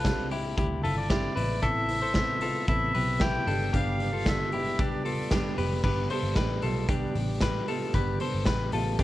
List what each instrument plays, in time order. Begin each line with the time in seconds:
Already playing: picked electric bass C2, clean electric guitar F4 A4, melodica B4
0.05 steel-string acoustic guitar C3 G3 C4 D4 E4, kick, snare, closed hi-hat
0.31 steel-string acoustic guitar C4 D4 E4, clean electric guitar E4 G4, open hi-hat
0.57 picked electric bass D2, steel-string acoustic guitar G3 C4 D4 E4, clean electric guitar E4 G4, kick, closed hi-hat
0.83 picked electric bass G1, steel-string acoustic guitar C4 D4 E4, clean electric guitar F4 A4, melodica E5, open hi-hat
0.97 melodica D5
1.10 steel-string acoustic guitar C3 G3 C4 D4 E4, clean electric guitar E4 G4, kick, snare, closed hi-hat
1.36 picked electric bass A1, steel-string acoustic guitar B3 C4 E4, clean electric guitar E4 B4, open hi-hat
1.62 steel-string acoustic guitar A2 E3 B3 C4 E4, clean electric guitar E4 A4, melodica E5, kick, closed hi-hat
1.88 steel-string acoustic guitar B3 C4 E4, open hi-hat
2.02 clean electric guitar A4 C5
2.14 steel-string acoustic guitar A2 E3 B3 C4 E4, melodica E5, kick, snare, closed hi-hat
2.41 steel-string acoustic guitar B3 C4 E4, clean electric guitar F4 A4, open hi-hat
2.67 picked electric bass A1, steel-string acoustic guitar E3 B3 C4 E4, clean electric guitar E4 A4, melodica E5, kick, closed hi-hat
2.95 picked electric bass B1, steel-string acoustic guitar B3 C4 E4, clean electric guitar G4 B4, open hi-hat
3.20 steel-string acoustic guitar A2 E3 B3 C4, clean electric guitar E4 G4, melodica G5, kick, snare, closed hi-hat
3.24 steel-string acoustic guitar E4
3.47 picked electric bass G1, steel-string acoustic guitar G3 B3 D4 G4, clean electric guitar D4 A4, open hi-hat
3.73 picked electric bass G1, steel-string acoustic guitar G2 D3 G3 B3 D4 G4, clean electric guitar D4 G4, melodica F5, kick, closed hi-hat
4.00 steel-string acoustic guitar G3 B3 D4 G4, open hi-hat
4.13 clean electric guitar F4 A4
4.26 steel-string acoustic guitar G2 D3 G3 B3 D4 G4, melodica E5, kick, snare, closed hi-hat
4.52 steel-string acoustic guitar G3 B3 D4 G4, clean electric guitar E4 G4, open hi-hat
4.79 picked electric bass B1, steel-string acoustic guitar G3 B3 D4 G4, clean electric guitar D4 G4, melodica D5, kick, closed hi-hat
5.04 picked electric bass E1, steel-string acoustic guitar G3 B3 D4 G4, clean electric guitar F4 A4, open hi-hat
5.31 steel-string acoustic guitar G2 D3 G3 B3 D4 G4, clean electric guitar D4 G4, kick, snare, closed hi-hat
5.57 picked electric bass F1, steel-string acoustic guitar G3 B3 D4 G4, clean electric guitar G4 B4, open hi-hat
5.84 picked electric bass G1, steel-string acoustic guitar G2 D3 G3 B3 D4 G4, clean electric guitar G4 B4, kick, crash
6.10 steel-string acoustic guitar G3 B3 D4 G4, clean electric guitar A4 C5, open hi-hat
6.23 picked electric bass G1
6.36 picked electric bass A1, steel-string acoustic guitar G3 B3 D4 G4, clean electric guitar G4 B4, kick, snare, closed hi-hat
6.62 picked electric bass B1, steel-string acoustic guitar G3 B3 D4 G4, clean electric guitar F4 A4, open hi-hat
6.89 steel-string acoustic guitar G2 D3 G3 B3 D4 G4, clean electric guitar D4 G4, kick, closed hi-hat
7.15 picked electric bass A1, steel-string acoustic guitar G3 B3 D4 G4, open hi-hat
7.40 steel-string acoustic guitar G3 B3 D4 G4, clean electric guitar G4 B4, kick, snare, closed hi-hat
7.68 steel-string acoustic guitar G3 B3 D4 G4, clean electric guitar F4 A4, open hi-hat
7.94 picked electric bass G1, steel-string acoustic guitar G2 D3 G3 B3 D4 G4, clean electric guitar G4 B4, kick, closed hi-hat
8.19 steel-string acoustic guitar G3 B3 D4 G4, clean electric guitar A4 C5, open hi-hat
8.34 picked electric bass G1
8.45 picked electric bass A1, steel-string acoustic guitar G3 B3 D4 G4, clean electric guitar G4 B4, kick, snare, closed hi-hat
8.72 picked electric bass A1, steel-string acoustic guitar G3 B3 D4 G4, clean electric guitar F4 A4, open hi-hat
8.99 steel-string acoustic guitar G2 D3 G3 B3 D4 G4, clean electric guitar D4 G4, kick, closed hi-hat